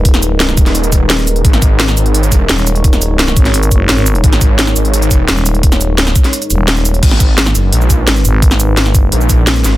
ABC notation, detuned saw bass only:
X:1
M:4/4
L:1/8
Q:1/4=172
K:G#m
V:1 name="Detuned saw bass" clef=bass
z3 D,,,4- D,,, | G,,,3 G,,,3 z2 | z8 | G,,,3 G,,,3 z2 |
z8 | G,,,3 F,,, A,,,2 G,,, z | z4 A,,,3 G,,, |]